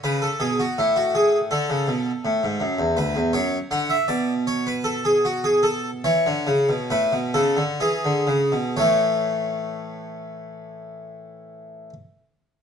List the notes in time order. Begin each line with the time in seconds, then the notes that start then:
0.04 C#3 B4
0.22 A4
0.40 B2 G#4
0.60 F#4
0.78 A2 E4
0.96 F#4
1.15 G#4
1.51 D3 A4
1.70 C#3
1.88 B2
2.25 A2
2.43 G#2
2.60 F#2
2.79 E2
2.97 D2 B4
3.15 E2
3.33 F#2 C#5
3.71 D3 F#5
3.90 E5
4.08 B2 D5
4.47 C#5
4.67 B4
4.84 A4
5.05 G#4
5.25 F#4
5.44 G#4
5.63 A4
6.04 E3 C#5
6.26 D3
6.47 C#3
6.69 B2
6.90 A2 B4
7.12 B2
7.34 C#3 A4
7.57 D3
7.80 E3 G#4
8.05 D3
8.27 C#3
8.52 B2
8.77 A2 E3 A3 C#5